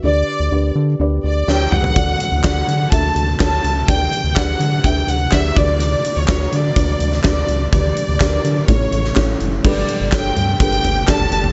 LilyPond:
<<
  \new Staff \with { instrumentName = "Violin section" } { \time 4/4 \key g \lydian \tempo 4 = 125 d''4. r4 d''8 g''8 fis''8~ | fis''4 fis''4 a''4 a''4 | g''4 fis''4 g''8 fis''8 e''8 d''8~ | d''8. cis''8. d''4. d''4 |
d''2 cis''4. r8 | d''4 g''4 g''4 a''4 | }
  \new Staff \with { instrumentName = "Felt piano" } { \time 4/4 \key g \lydian <d' g' b' d''>8 r8 <d' g' b' d''>8 r8 <d' g' b' d''>8 r8 <d' g' b' cis''>8 r8 | <d' fis' a' d''>8 r8 <d' fis' a' d''>8 r8 <d' fis' a' e''>8 r8 <d' fis' a' cis''>8 r8 | <d' g' b' d''>8 r8 <d' g' b' d''>8 r8 <d' g' b' e''>8 r8 <d' g' b' d''>8 <d' fis' b' d''>8~ | <d' fis' b' d''>8 r8 <d' fis' b' d''>8 r8 <d' fis' b' d''>8 r8 <d' fis' b' d''>8 r8 |
<d' g' b' d''>8 r8 <d' g' bes' b' d''>8 r8 <cis' e' a' cis''>8 r8 <cis' e' a' cis''>8 r8 | <d' g' a' b'>8 r8 <d' g' a' cis''>8 r8 <d' g' a' b'>8 r8 <d' g' a' d''>8 r8 | }
  \new Staff \with { instrumentName = "Felt piano" } { \clef bass \time 4/4 \key g \lydian d4. r2 r8 | d4. r2 r8 | d4. r2 d8~ | d4 r2. |
d4. r8 a,4. r8 | g,4. r2 r8 | }
  \new Staff \with { instrumentName = "String section" } { \time 4/4 \key g \lydian r1 | r1 | r1 | r1 |
r1 | <d a b g'>1 | }
  \new Staff \with { instrumentName = "Analog synth bass" } { \clef bass \time 4/4 \key g \lydian d,8 r16 d,16 d,8 d8 d,8 d,8 d,8 cis,8 | d,8 r16 d,16 d,8 d8 d,8 d,8 d,8 cis,8 | d,8 r16 d,16 d,8 d8 d,8 d,8 d,8 d,8~ | d,8 r16 d,16 d,8 d8 d,8 d,8 d,8 cis,8 |
d,8 r16 d,16 d,8 d8 a,,8 a,,8 a,,8 fis,,8 | g,,8 r16 g,,16 g,,8 g,8 g,,8 g,,8 g,,8 fis,,8 | }
  \new DrumStaff \with { instrumentName = "Drums" } \drummode { \time 4/4 r4 r4 r4 sn8 toml16 tomfh16 | <hh bd>8 hh8 <hc hh bd sn>8 hh8 <hh bd>8 hh8 <hc hh bd sn>8 hh8 | <hh bd>8 hh8 <hc hh bd sn>8 hh8 <hh bd>8 hh8 <hc hh bd sn>8 <hh bd>8 | hh8 hh8 <hc hh bd sn>8 hh8 <hh bd>8 hh16 sn16 <hc hh bd sn>8 hh8 |
<hh bd>8 hh8 <hc hh bd sn>8 hh8 <hh bd>8 hh16 sn16 <hc hh bd sn>8 hh8 | <cymc bd>8 hh8 <hc hh bd sn>8 <hh tomfh>8 <hh bd>16 hh16 <hh tomfh>8 <hc hh bd sn>16 tomfh16 hh16 tomfh16 | }
>>